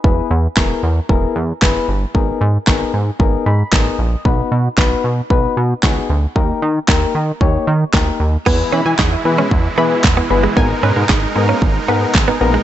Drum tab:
CC |--------|--------|--------|--------|
CP |--x---x-|--x---x-|--x---x-|--x---x-|
SD |--o---o-|--o---o-|--o---o-|--o---o-|
BD |o-o-o-o-|o-o-o-o-|o-o-o-o-|o-o-o-o-|

CC |x-------|--------|
CP |--x---x-|--x---x-|
SD |--o---o-|--o---o-|
BD |o-o-o-o-|o-o-o-o-|